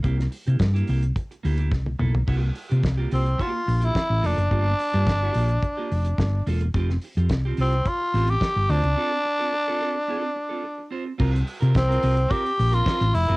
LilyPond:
<<
  \new Staff \with { instrumentName = "Clean electric guitar" } { \time 4/4 \key c \mixolydian \tempo 4 = 108 <bes e' g'>16 r8 <bes e' g'>16 r16 <bes e' g'>16 <bes e' g'>16 r8. <bes e' g'>16 <bes e' g'>16 r8 <bes e' a'>16 r16 | <bes f' g'>16 r8 <bes f' g'>16 r16 <bes f' g'>16 <bes f' g'>16 r16 <bes f' g'>16 r8 <bes f' g'>16 r8 <bes f' a'>16 r16 | <bes f' g'>16 r8 <bes f' g'>16 r16 <bes f' g'>16 <bes f' g'>16 r8 <bes f' g'>16 r4 <bes f' a'>16 r16 | <c' f' g'>16 r8 <c' f' g'>16 r16 <c' f' g'>16 <c' f' g'>16 r8. <c' f' g'>16 r8. <c' f' c''>16 r16 |
<c' f' a'>16 r8 <c' f' a'>16 r16 <c' f' a'>16 <c' f' a'>16 r16 <c' f' a'>16 r8 <c' f' a'>16 r8 <c' f' c''>16 r16 | <c' f' bes'>16 r8 <c' f' bes'>16 r16 <c' f' bes'>16 <c' f' bes'>16 r16 <c' f' bes'>16 r8 <c' f' bes'>16 <c' f' bes'>16 r8 <c' f' bes'>16 | }
  \new Staff \with { instrumentName = "Tenor saxophone" } { \time 4/4 \key c \mixolydian r1 | r4. c'8 f'8~ f'32 f'32 e'8. d'8~ | d'2.~ d'8 r8 | r4. c'8 f'8. g'8. d'8~ |
d'2.~ d'8 r8 | r4 c'4 g'8. f'8. e'8 | }
  \new Staff \with { instrumentName = "Fingered electric bass" } { \clef bass \time 4/4 \key c \mixolydian c,8 r16 c16 g,8 c,8 r8 d,8 c,8 b,,8 | c,8 r16 c16 c,8 c,8 r8 bes,,8 r16 a,,16 f,,16 fis,,16 | g,,8 r16 g,16 g,,8 bes,,8 r8 f,,8 g,,8 e,,8 | f,,8 r16 f,16 c,8 c,8 r8 a,,8 r16 g,,16 d,16 cis,16 |
r1 | c,8 r16 c16 c,8 c,8 r8 bes,,8 r16 a,,16 f,,16 fis,,16 | }
  \new DrumStaff \with { instrumentName = "Drums" } \drummode { \time 4/4 <hh bd>16 <hh sn>16 hho16 hh16 <hh bd sn>16 hh16 hho16 hh16 <hh bd>16 hh16 hho16 hh16 <bd sn>16 tommh16 toml16 tomfh16 | <cymc bd>8 hho16 hh16 <hh bd sn>8 hho16 hh16 <hh bd>8 hho16 hh16 <hh bd sn>8 hho16 hh16 | <hh bd>8 hho16 hh16 <hh bd sn>8 hho16 hh16 <hh bd>8 hho16 hh16 <hh bd sn>8 hho16 hh16 | <hh bd>16 sn16 hho16 hh16 <hh bd sn>8 hho16 hh16 <hh bd>8 hho16 hh16 <hh bd sn>8 hho16 hh16 |
r4 r4 r4 r4 | <cymc bd>16 hh16 hho16 hh16 <hh bd sn>16 hh16 hho16 hh16 <hh bd>16 hh16 hho16 hh16 <hh bd sn>16 hh16 hho16 hh16 | }
>>